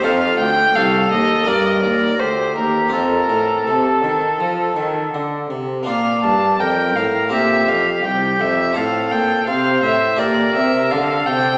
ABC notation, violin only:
X:1
M:4/4
L:1/16
Q:1/4=83
K:Fmix
V:1 name="Violin"
f2 g2 f2 e2 d e d2 c2 B2 | B4 A8 z4 | [K:Gdor] f2 a2 g2 f2 e2 f2 g2 e2 | f2 g2 f2 e2 d2 e2 f2 g2 |]